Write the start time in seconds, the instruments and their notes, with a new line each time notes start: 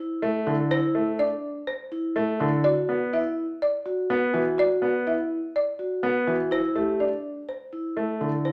0.00 vibraphone E4
0.22 grand piano A3
0.47 grand piano D3, vibraphone E4
0.71 vibraphone E4, marimba C5
0.95 grand piano A3
1.19 vibraphone D4, marimba D5
1.67 marimba C5
1.92 vibraphone E4
2.16 grand piano A3
2.40 grand piano D3, vibraphone E4
2.64 vibraphone F#4, marimba D5
2.89 grand piano B3
3.13 vibraphone E4, marimba E5
3.62 marimba D5
3.86 vibraphone F#4
4.10 grand piano B3
4.34 grand piano E3, vibraphone F#4
4.58 vibraphone F#4, marimba D5
4.82 grand piano B3
5.07 vibraphone E4, marimba E5
5.56 marimba D5
5.79 vibraphone F#4
6.03 grand piano B3
6.27 grand piano E3, vibraphone F#4
6.51 vibraphone E4, marimba C5
6.75 grand piano A3, vibraphone G4
7.00 vibraphone D4, marimba D5
7.49 marimba C5
7.73 vibraphone E4
7.97 grand piano A3
8.21 grand piano D3, vibraphone E4
8.45 vibraphone E4, marimba C5